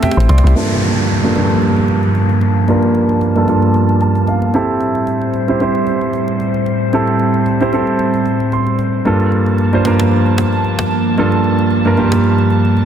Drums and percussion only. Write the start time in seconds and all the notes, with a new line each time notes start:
0.03 cajon bass, cajon slap
0.11 cajon slap
0.17 cajon slap
0.20 cajon slap
0.29 cajon slap
0.38 cajon slap
0.47 cajon slap
0.56 cajon slap
0.70 cajon slap
0.82 cajon slap
0.97 cajon slap
1.09 cajon slap
1.23 cajon slap
1.35 cajon slap
1.50 cajon slap
1.62 cajon slap
1.77 cajon slap
1.88 cajon slap
2.03 cajon slap
2.15 cajon slap
2.29 cajon slap
2.41 cajon slap
2.68 cajon slap
2.82 cajon slap
2.95 cajon slap
3.09 cajon slap
3.21 cajon slap
3.36 cajon slap
3.48 cajon slap
3.62 cajon slap
3.74 cajon slap
3.89 cajon slap
4.01 cajon slap
4.15 cajon slap
4.27 cajon slap
4.42 cajon slap
4.54 cajon slap
4.80 cajon slap
4.95 cajon slap
5.07 cajon slap
5.22 cajon slap
5.34 cajon slap
5.48 cajon slap
5.60 cajon slap
5.75 cajon slap
5.87 cajon slap
6.01 cajon slap
6.13 cajon slap
6.28 cajon slap
6.40 cajon slap
6.54 cajon slap
6.66 cajon slap
6.93 cajon slap
7.07 cajon slap
7.19 cajon slap
7.34 cajon slap
7.46 cajon slap
7.61 cajon slap
7.73 cajon slap
7.87 cajon slap
7.99 cajon slap
8.14 cajon slap
8.25 cajon slap
8.40 cajon slap
8.52 cajon slap
8.67 cajon slap
8.79 cajon slap
9.05 cajon slap
9.20 cajon slap
9.32 cajon slap
9.46 cajon slap
9.58 cajon slap
9.73 cajon slap
9.85 cajon slap
10.00 cajon slap
10.11 cajon slap
10.26 cajon slap
10.38 cajon slap
10.53 cajon slap
10.64 cajon slap
10.79 cajon slap
10.91 cajon slap
11.18 cajon slap
11.32 cajon slap
11.44 cajon slap
11.59 cajon slap
11.71 cajon slap
11.85 cajon slap
11.97 cajon slap
12.12 cajon slap
12.24 cajon slap
12.38 cajon slap
12.50 cajon slap
12.65 cajon slap
12.77 cajon slap